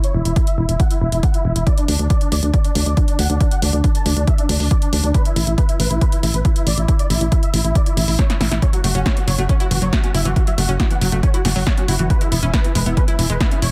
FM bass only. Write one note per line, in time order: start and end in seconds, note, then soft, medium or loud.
0.14 0.23 E1 medium
0.25 0.34 E1 medium
0.58 0.66 E1 medium
0.69 0.77 E1 medium
1.01 1.10 E1 medium
1.12 1.21 E1 medium
1.45 1.53 E1 medium
1.56 1.64 E1 medium
1.88 1.97 D2 medium
1.99 2.08 D2 medium
2.32 2.40 D2 medium
2.43 2.51 D2 medium
2.75 2.84 D2 medium
2.86 2.95 D2 medium
3.19 3.27 D2 medium
3.30 3.38 D2 medium
3.62 3.71 D2 medium
3.73 3.82 D2 medium
4.06 4.14 D2 medium
4.17 4.25 D2 medium
4.49 4.58 D2 loud
4.60 4.68 D2 medium
4.93 5.01 D2 medium
5.04 5.12 D2 medium
5.36 5.45 A1 medium
5.47 5.55 A1 medium
5.80 5.88 A1 medium
5.91 5.99 A1 medium
6.23 6.32 A1 medium
6.34 6.42 A1 medium
6.67 6.75 A1 medium
6.78 6.86 A1 medium
7.10 7.19 A1 medium
7.21 7.29 A1 medium
7.54 7.62 A1 medium
7.64 7.73 A1 medium
7.97 8.05 A1 medium
8.08 8.16 A1 medium
8.41 8.49 A1 medium
8.52 8.60 A1 medium
8.84 8.92 F#1 medium
8.95 9.03 F#1 medium
9.28 9.36 F#1 medium
9.38 9.47 F#1 medium
9.71 9.79 F#1 medium
9.82 9.90 F#1 medium
10.15 10.23 F#1 medium
10.25 10.34 F#1 medium
10.58 10.66 F#1 medium
10.69 10.77 F#1 medium
11.01 11.10 F#1 medium
11.12 11.21 F#1 medium
11.45 11.53 F#1 loud
11.56 11.64 F#1 medium
11.88 11.97 F#1 medium
11.99 12.08 F#1 medium
12.32 12.40 E1 medium
12.43 12.51 E1 medium
12.75 12.84 E1 loud
12.86 12.95 E1 medium
13.19 13.27 E1 loud
13.30 13.38 E1 medium
13.62 13.71 E1 medium